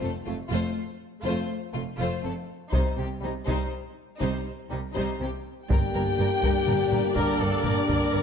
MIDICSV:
0, 0, Header, 1, 10, 480
1, 0, Start_track
1, 0, Key_signature, -2, "minor"
1, 0, Tempo, 490998
1, 2666, Time_signature, 12, 3, 24, 8
1, 8042, End_track
2, 0, Start_track
2, 0, Title_t, "Violin section"
2, 0, Program_c, 0, 48
2, 34, Note_on_c, 0, 69, 40
2, 112, Note_off_c, 0, 69, 0
2, 260, Note_on_c, 0, 65, 35
2, 338, Note_off_c, 0, 65, 0
2, 513, Note_on_c, 0, 72, 48
2, 731, Note_off_c, 0, 72, 0
2, 1227, Note_on_c, 0, 72, 52
2, 1448, Note_off_c, 0, 72, 0
2, 1700, Note_on_c, 0, 65, 38
2, 1778, Note_off_c, 0, 65, 0
2, 1959, Note_on_c, 0, 72, 43
2, 2175, Note_off_c, 0, 72, 0
2, 2196, Note_on_c, 0, 69, 39
2, 2274, Note_off_c, 0, 69, 0
2, 2661, Note_on_c, 0, 72, 38
2, 2888, Note_off_c, 0, 72, 0
2, 2921, Note_on_c, 0, 67, 29
2, 2999, Note_off_c, 0, 67, 0
2, 3164, Note_on_c, 0, 63, 31
2, 3242, Note_off_c, 0, 63, 0
2, 3397, Note_on_c, 0, 72, 37
2, 3621, Note_off_c, 0, 72, 0
2, 4124, Note_on_c, 0, 72, 38
2, 4347, Note_off_c, 0, 72, 0
2, 4607, Note_on_c, 0, 63, 33
2, 4686, Note_off_c, 0, 63, 0
2, 4844, Note_on_c, 0, 72, 37
2, 5069, Note_off_c, 0, 72, 0
2, 5104, Note_on_c, 0, 67, 35
2, 5182, Note_off_c, 0, 67, 0
2, 5580, Note_on_c, 0, 70, 57
2, 5658, Note_off_c, 0, 70, 0
2, 5813, Note_on_c, 0, 70, 50
2, 5892, Note_off_c, 0, 70, 0
2, 6058, Note_on_c, 0, 70, 51
2, 6137, Note_off_c, 0, 70, 0
2, 6298, Note_on_c, 0, 70, 53
2, 6376, Note_off_c, 0, 70, 0
2, 6529, Note_on_c, 0, 70, 51
2, 6607, Note_off_c, 0, 70, 0
2, 6776, Note_on_c, 0, 70, 47
2, 6855, Note_off_c, 0, 70, 0
2, 7027, Note_on_c, 0, 70, 55
2, 7105, Note_off_c, 0, 70, 0
2, 7247, Note_on_c, 0, 70, 51
2, 7325, Note_off_c, 0, 70, 0
2, 7495, Note_on_c, 0, 70, 49
2, 7573, Note_off_c, 0, 70, 0
2, 7706, Note_on_c, 0, 70, 47
2, 7785, Note_off_c, 0, 70, 0
2, 7944, Note_on_c, 0, 70, 48
2, 8022, Note_off_c, 0, 70, 0
2, 8042, End_track
3, 0, Start_track
3, 0, Title_t, "French horn section"
3, 0, Program_c, 1, 60
3, 5591, Note_on_c, 1, 67, 86
3, 6971, Note_off_c, 1, 67, 0
3, 6997, Note_on_c, 1, 62, 84
3, 8042, Note_off_c, 1, 62, 0
3, 8042, End_track
4, 0, Start_track
4, 0, Title_t, "String section"
4, 0, Program_c, 2, 48
4, 5575, Note_on_c, 2, 67, 65
4, 5581, Note_on_c, 2, 58, 66
4, 5581, Note_on_c, 2, 74, 70
4, 5586, Note_on_c, 2, 62, 62
4, 8042, Note_off_c, 2, 58, 0
4, 8042, Note_off_c, 2, 62, 0
4, 8042, Note_off_c, 2, 67, 0
4, 8042, Note_off_c, 2, 74, 0
4, 8042, End_track
5, 0, Start_track
5, 0, Title_t, "Violin section"
5, 0, Program_c, 3, 48
5, 15, Note_on_c, 3, 60, 33
5, 93, Note_off_c, 3, 60, 0
5, 261, Note_on_c, 3, 57, 37
5, 339, Note_off_c, 3, 57, 0
5, 486, Note_on_c, 3, 65, 52
5, 716, Note_off_c, 3, 65, 0
5, 1217, Note_on_c, 3, 65, 49
5, 1443, Note_off_c, 3, 65, 0
5, 1693, Note_on_c, 3, 57, 34
5, 1772, Note_off_c, 3, 57, 0
5, 1934, Note_on_c, 3, 65, 45
5, 2162, Note_off_c, 3, 65, 0
5, 2178, Note_on_c, 3, 60, 31
5, 2256, Note_off_c, 3, 60, 0
5, 2658, Note_on_c, 3, 63, 42
5, 2887, Note_off_c, 3, 63, 0
5, 2906, Note_on_c, 3, 60, 27
5, 2984, Note_off_c, 3, 60, 0
5, 3134, Note_on_c, 3, 55, 30
5, 3212, Note_off_c, 3, 55, 0
5, 3401, Note_on_c, 3, 63, 49
5, 3623, Note_off_c, 3, 63, 0
5, 4107, Note_on_c, 3, 63, 46
5, 4337, Note_off_c, 3, 63, 0
5, 4602, Note_on_c, 3, 55, 32
5, 4681, Note_off_c, 3, 55, 0
5, 4838, Note_on_c, 3, 63, 45
5, 5066, Note_off_c, 3, 63, 0
5, 5081, Note_on_c, 3, 60, 35
5, 5159, Note_off_c, 3, 60, 0
5, 5556, Note_on_c, 3, 79, 79
5, 6953, Note_off_c, 3, 79, 0
5, 6988, Note_on_c, 3, 74, 76
5, 8042, Note_off_c, 3, 74, 0
5, 8042, End_track
6, 0, Start_track
6, 0, Title_t, "Viola section"
6, 0, Program_c, 4, 48
6, 17, Note_on_c, 4, 57, 38
6, 96, Note_off_c, 4, 57, 0
6, 265, Note_on_c, 4, 57, 35
6, 343, Note_off_c, 4, 57, 0
6, 496, Note_on_c, 4, 57, 51
6, 722, Note_off_c, 4, 57, 0
6, 1229, Note_on_c, 4, 57, 49
6, 1449, Note_off_c, 4, 57, 0
6, 1715, Note_on_c, 4, 57, 31
6, 1793, Note_off_c, 4, 57, 0
6, 1944, Note_on_c, 4, 57, 43
6, 2167, Note_off_c, 4, 57, 0
6, 2183, Note_on_c, 4, 57, 33
6, 2261, Note_off_c, 4, 57, 0
6, 2674, Note_on_c, 4, 55, 39
6, 2895, Note_off_c, 4, 55, 0
6, 2919, Note_on_c, 4, 55, 33
6, 2997, Note_off_c, 4, 55, 0
6, 3162, Note_on_c, 4, 55, 31
6, 3240, Note_off_c, 4, 55, 0
6, 3393, Note_on_c, 4, 55, 44
6, 3619, Note_off_c, 4, 55, 0
6, 4113, Note_on_c, 4, 55, 41
6, 4340, Note_off_c, 4, 55, 0
6, 4600, Note_on_c, 4, 55, 33
6, 4678, Note_off_c, 4, 55, 0
6, 4843, Note_on_c, 4, 55, 46
6, 5069, Note_off_c, 4, 55, 0
6, 5082, Note_on_c, 4, 55, 35
6, 5160, Note_off_c, 4, 55, 0
6, 7000, Note_on_c, 4, 70, 67
6, 7222, Note_off_c, 4, 70, 0
6, 7247, Note_on_c, 4, 69, 66
6, 7473, Note_on_c, 4, 70, 58
6, 7481, Note_off_c, 4, 69, 0
6, 7691, Note_off_c, 4, 70, 0
6, 7703, Note_on_c, 4, 70, 62
6, 8042, Note_off_c, 4, 70, 0
6, 8042, End_track
7, 0, Start_track
7, 0, Title_t, "Trombone section"
7, 0, Program_c, 5, 61
7, 5588, Note_on_c, 5, 50, 59
7, 5594, Note_on_c, 5, 58, 52
7, 8042, Note_off_c, 5, 50, 0
7, 8042, Note_off_c, 5, 58, 0
7, 8042, End_track
8, 0, Start_track
8, 0, Title_t, "Cello section"
8, 0, Program_c, 6, 48
8, 34, Note_on_c, 6, 41, 40
8, 112, Note_off_c, 6, 41, 0
8, 273, Note_on_c, 6, 41, 39
8, 351, Note_off_c, 6, 41, 0
8, 503, Note_on_c, 6, 41, 51
8, 582, Note_off_c, 6, 41, 0
8, 1222, Note_on_c, 6, 41, 47
8, 1301, Note_off_c, 6, 41, 0
8, 1708, Note_on_c, 6, 41, 34
8, 1786, Note_off_c, 6, 41, 0
8, 1952, Note_on_c, 6, 41, 47
8, 2030, Note_off_c, 6, 41, 0
8, 2201, Note_on_c, 6, 41, 38
8, 2279, Note_off_c, 6, 41, 0
8, 2670, Note_on_c, 6, 48, 45
8, 2748, Note_off_c, 6, 48, 0
8, 2913, Note_on_c, 6, 48, 33
8, 2991, Note_off_c, 6, 48, 0
8, 3159, Note_on_c, 6, 48, 35
8, 3237, Note_off_c, 6, 48, 0
8, 3395, Note_on_c, 6, 48, 45
8, 3473, Note_off_c, 6, 48, 0
8, 4122, Note_on_c, 6, 48, 45
8, 4200, Note_off_c, 6, 48, 0
8, 4608, Note_on_c, 6, 48, 31
8, 4686, Note_off_c, 6, 48, 0
8, 4851, Note_on_c, 6, 48, 44
8, 4929, Note_off_c, 6, 48, 0
8, 5092, Note_on_c, 6, 48, 37
8, 5171, Note_off_c, 6, 48, 0
8, 5570, Note_on_c, 6, 43, 69
8, 5648, Note_off_c, 6, 43, 0
8, 5815, Note_on_c, 6, 43, 58
8, 5893, Note_off_c, 6, 43, 0
8, 6048, Note_on_c, 6, 43, 59
8, 6126, Note_off_c, 6, 43, 0
8, 6288, Note_on_c, 6, 43, 61
8, 6367, Note_off_c, 6, 43, 0
8, 6517, Note_on_c, 6, 43, 59
8, 6595, Note_off_c, 6, 43, 0
8, 6751, Note_on_c, 6, 43, 56
8, 6829, Note_off_c, 6, 43, 0
8, 6996, Note_on_c, 6, 43, 62
8, 7074, Note_off_c, 6, 43, 0
8, 7239, Note_on_c, 6, 43, 56
8, 7318, Note_off_c, 6, 43, 0
8, 7468, Note_on_c, 6, 43, 52
8, 7546, Note_off_c, 6, 43, 0
8, 7707, Note_on_c, 6, 43, 57
8, 7785, Note_off_c, 6, 43, 0
8, 7940, Note_on_c, 6, 43, 64
8, 8018, Note_off_c, 6, 43, 0
8, 8042, End_track
9, 0, Start_track
9, 0, Title_t, "Double bass section"
9, 0, Program_c, 7, 48
9, 22, Note_on_c, 7, 29, 41
9, 100, Note_off_c, 7, 29, 0
9, 267, Note_on_c, 7, 29, 40
9, 345, Note_off_c, 7, 29, 0
9, 510, Note_on_c, 7, 29, 53
9, 588, Note_off_c, 7, 29, 0
9, 1224, Note_on_c, 7, 29, 52
9, 1303, Note_off_c, 7, 29, 0
9, 1705, Note_on_c, 7, 29, 36
9, 1783, Note_off_c, 7, 29, 0
9, 1946, Note_on_c, 7, 29, 52
9, 2024, Note_off_c, 7, 29, 0
9, 2186, Note_on_c, 7, 29, 31
9, 2265, Note_off_c, 7, 29, 0
9, 2663, Note_on_c, 7, 36, 44
9, 2741, Note_off_c, 7, 36, 0
9, 2906, Note_on_c, 7, 36, 30
9, 2984, Note_off_c, 7, 36, 0
9, 3149, Note_on_c, 7, 36, 31
9, 3228, Note_off_c, 7, 36, 0
9, 3396, Note_on_c, 7, 36, 46
9, 3474, Note_off_c, 7, 36, 0
9, 4119, Note_on_c, 7, 36, 45
9, 4197, Note_off_c, 7, 36, 0
9, 4604, Note_on_c, 7, 36, 34
9, 4683, Note_off_c, 7, 36, 0
9, 4846, Note_on_c, 7, 36, 44
9, 4924, Note_off_c, 7, 36, 0
9, 5090, Note_on_c, 7, 36, 30
9, 5168, Note_off_c, 7, 36, 0
9, 5578, Note_on_c, 7, 31, 67
9, 5657, Note_off_c, 7, 31, 0
9, 5810, Note_on_c, 7, 31, 58
9, 5888, Note_off_c, 7, 31, 0
9, 6051, Note_on_c, 7, 31, 56
9, 6129, Note_off_c, 7, 31, 0
9, 6285, Note_on_c, 7, 31, 66
9, 6363, Note_off_c, 7, 31, 0
9, 6525, Note_on_c, 7, 31, 59
9, 6603, Note_off_c, 7, 31, 0
9, 6770, Note_on_c, 7, 31, 57
9, 6848, Note_off_c, 7, 31, 0
9, 7006, Note_on_c, 7, 31, 64
9, 7084, Note_off_c, 7, 31, 0
9, 7233, Note_on_c, 7, 31, 61
9, 7311, Note_off_c, 7, 31, 0
9, 7477, Note_on_c, 7, 31, 55
9, 7556, Note_off_c, 7, 31, 0
9, 7717, Note_on_c, 7, 31, 59
9, 7795, Note_off_c, 7, 31, 0
9, 7945, Note_on_c, 7, 31, 57
9, 8024, Note_off_c, 7, 31, 0
9, 8042, End_track
10, 0, Start_track
10, 0, Title_t, "Taiko and cinematic ensemble drums"
10, 2667, Note_on_c, 9, 41, 77
10, 2765, Note_off_c, 9, 41, 0
10, 3400, Note_on_c, 9, 41, 64
10, 3498, Note_off_c, 9, 41, 0
10, 4116, Note_on_c, 9, 41, 60
10, 4214, Note_off_c, 9, 41, 0
10, 4846, Note_on_c, 9, 41, 60
10, 4944, Note_off_c, 9, 41, 0
10, 5577, Note_on_c, 9, 41, 85
10, 5675, Note_off_c, 9, 41, 0
10, 6291, Note_on_c, 9, 41, 74
10, 6389, Note_off_c, 9, 41, 0
10, 6528, Note_on_c, 9, 45, 57
10, 6625, Note_off_c, 9, 45, 0
10, 6768, Note_on_c, 9, 45, 46
10, 6865, Note_off_c, 9, 45, 0
10, 6996, Note_on_c, 9, 41, 72
10, 7094, Note_off_c, 9, 41, 0
10, 7473, Note_on_c, 9, 45, 57
10, 7571, Note_off_c, 9, 45, 0
10, 7712, Note_on_c, 9, 41, 66
10, 7809, Note_off_c, 9, 41, 0
10, 8042, End_track
0, 0, End_of_file